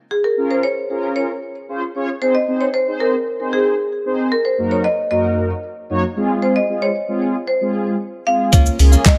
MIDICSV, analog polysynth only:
0, 0, Header, 1, 2, 480
1, 0, Start_track
1, 0, Tempo, 526316
1, 99, Time_signature, 4, 2, 24, 8
1, 8374, End_track
2, 0, Start_track
2, 0, Title_t, "Analog polysynth"
2, 0, Program_c, 0, 90
2, 337, Note_on_c, 0, 61, 84
2, 341, Note_on_c, 0, 65, 80
2, 342, Note_on_c, 0, 68, 72
2, 343, Note_on_c, 0, 70, 91
2, 592, Note_off_c, 0, 61, 0
2, 594, Note_off_c, 0, 65, 0
2, 595, Note_off_c, 0, 68, 0
2, 595, Note_off_c, 0, 70, 0
2, 819, Note_on_c, 0, 61, 75
2, 820, Note_on_c, 0, 65, 69
2, 821, Note_on_c, 0, 68, 69
2, 823, Note_on_c, 0, 70, 85
2, 1200, Note_off_c, 0, 61, 0
2, 1200, Note_off_c, 0, 65, 0
2, 1201, Note_off_c, 0, 68, 0
2, 1202, Note_off_c, 0, 70, 0
2, 1538, Note_on_c, 0, 61, 86
2, 1539, Note_on_c, 0, 65, 78
2, 1541, Note_on_c, 0, 68, 77
2, 1542, Note_on_c, 0, 72, 97
2, 1666, Note_off_c, 0, 61, 0
2, 1666, Note_off_c, 0, 65, 0
2, 1667, Note_off_c, 0, 68, 0
2, 1668, Note_off_c, 0, 72, 0
2, 1780, Note_on_c, 0, 61, 93
2, 1782, Note_on_c, 0, 65, 81
2, 1784, Note_on_c, 0, 68, 82
2, 1787, Note_on_c, 0, 73, 104
2, 1907, Note_off_c, 0, 61, 0
2, 1908, Note_off_c, 0, 65, 0
2, 1909, Note_off_c, 0, 68, 0
2, 1910, Note_off_c, 0, 73, 0
2, 2020, Note_on_c, 0, 60, 86
2, 2022, Note_on_c, 0, 63, 78
2, 2023, Note_on_c, 0, 68, 77
2, 2024, Note_on_c, 0, 72, 97
2, 2146, Note_off_c, 0, 60, 0
2, 2147, Note_off_c, 0, 63, 0
2, 2148, Note_off_c, 0, 68, 0
2, 2149, Note_off_c, 0, 72, 0
2, 2260, Note_on_c, 0, 60, 73
2, 2262, Note_on_c, 0, 63, 68
2, 2262, Note_on_c, 0, 68, 67
2, 2265, Note_on_c, 0, 72, 85
2, 2450, Note_off_c, 0, 60, 0
2, 2451, Note_off_c, 0, 63, 0
2, 2451, Note_off_c, 0, 68, 0
2, 2452, Note_off_c, 0, 72, 0
2, 2620, Note_on_c, 0, 60, 84
2, 2621, Note_on_c, 0, 63, 81
2, 2622, Note_on_c, 0, 68, 77
2, 2624, Note_on_c, 0, 72, 96
2, 2873, Note_off_c, 0, 60, 0
2, 2874, Note_off_c, 0, 63, 0
2, 2875, Note_off_c, 0, 68, 0
2, 2876, Note_off_c, 0, 72, 0
2, 3099, Note_on_c, 0, 63, 72
2, 3100, Note_on_c, 0, 60, 77
2, 3102, Note_on_c, 0, 68, 75
2, 3104, Note_on_c, 0, 72, 87
2, 3417, Note_off_c, 0, 60, 0
2, 3417, Note_off_c, 0, 63, 0
2, 3418, Note_off_c, 0, 68, 0
2, 3419, Note_off_c, 0, 72, 0
2, 3697, Note_on_c, 0, 60, 74
2, 3700, Note_on_c, 0, 63, 67
2, 3701, Note_on_c, 0, 68, 73
2, 3704, Note_on_c, 0, 72, 82
2, 3938, Note_off_c, 0, 60, 0
2, 3939, Note_off_c, 0, 63, 0
2, 3940, Note_off_c, 0, 68, 0
2, 3941, Note_off_c, 0, 72, 0
2, 4177, Note_on_c, 0, 42, 79
2, 4177, Note_on_c, 0, 58, 78
2, 4179, Note_on_c, 0, 63, 76
2, 4179, Note_on_c, 0, 66, 76
2, 4180, Note_on_c, 0, 70, 95
2, 4432, Note_off_c, 0, 42, 0
2, 4432, Note_off_c, 0, 58, 0
2, 4433, Note_off_c, 0, 63, 0
2, 4433, Note_off_c, 0, 66, 0
2, 4434, Note_off_c, 0, 70, 0
2, 4657, Note_on_c, 0, 42, 76
2, 4658, Note_on_c, 0, 58, 68
2, 4660, Note_on_c, 0, 63, 71
2, 4660, Note_on_c, 0, 66, 69
2, 4661, Note_on_c, 0, 70, 86
2, 5039, Note_off_c, 0, 42, 0
2, 5040, Note_off_c, 0, 58, 0
2, 5040, Note_off_c, 0, 63, 0
2, 5041, Note_off_c, 0, 66, 0
2, 5041, Note_off_c, 0, 70, 0
2, 5377, Note_on_c, 0, 42, 99
2, 5378, Note_on_c, 0, 58, 96
2, 5379, Note_on_c, 0, 63, 94
2, 5380, Note_on_c, 0, 66, 94
2, 5382, Note_on_c, 0, 73, 118
2, 5504, Note_off_c, 0, 42, 0
2, 5506, Note_off_c, 0, 58, 0
2, 5506, Note_off_c, 0, 63, 0
2, 5506, Note_off_c, 0, 66, 0
2, 5507, Note_off_c, 0, 73, 0
2, 5616, Note_on_c, 0, 56, 98
2, 5618, Note_on_c, 0, 60, 85
2, 5618, Note_on_c, 0, 65, 86
2, 5620, Note_on_c, 0, 68, 109
2, 6001, Note_off_c, 0, 56, 0
2, 6002, Note_off_c, 0, 60, 0
2, 6003, Note_off_c, 0, 65, 0
2, 6004, Note_off_c, 0, 68, 0
2, 6097, Note_on_c, 0, 56, 75
2, 6100, Note_on_c, 0, 60, 71
2, 6101, Note_on_c, 0, 65, 70
2, 6103, Note_on_c, 0, 68, 89
2, 6289, Note_off_c, 0, 56, 0
2, 6290, Note_off_c, 0, 60, 0
2, 6291, Note_off_c, 0, 65, 0
2, 6291, Note_off_c, 0, 68, 0
2, 6458, Note_on_c, 0, 56, 84
2, 6460, Note_on_c, 0, 60, 80
2, 6461, Note_on_c, 0, 65, 81
2, 6463, Note_on_c, 0, 68, 94
2, 6712, Note_off_c, 0, 56, 0
2, 6713, Note_off_c, 0, 60, 0
2, 6714, Note_off_c, 0, 65, 0
2, 6715, Note_off_c, 0, 68, 0
2, 6939, Note_on_c, 0, 56, 79
2, 6941, Note_on_c, 0, 60, 74
2, 6942, Note_on_c, 0, 65, 73
2, 6943, Note_on_c, 0, 68, 86
2, 7257, Note_off_c, 0, 56, 0
2, 7258, Note_off_c, 0, 60, 0
2, 7258, Note_off_c, 0, 65, 0
2, 7259, Note_off_c, 0, 68, 0
2, 7538, Note_on_c, 0, 56, 78
2, 7540, Note_on_c, 0, 60, 69
2, 7540, Note_on_c, 0, 65, 69
2, 7542, Note_on_c, 0, 68, 82
2, 7779, Note_off_c, 0, 56, 0
2, 7779, Note_off_c, 0, 60, 0
2, 7779, Note_off_c, 0, 65, 0
2, 7780, Note_off_c, 0, 68, 0
2, 8015, Note_on_c, 0, 58, 79
2, 8016, Note_on_c, 0, 61, 75
2, 8018, Note_on_c, 0, 65, 78
2, 8018, Note_on_c, 0, 68, 94
2, 8271, Note_off_c, 0, 58, 0
2, 8271, Note_off_c, 0, 61, 0
2, 8273, Note_off_c, 0, 65, 0
2, 8273, Note_off_c, 0, 68, 0
2, 8374, End_track
0, 0, End_of_file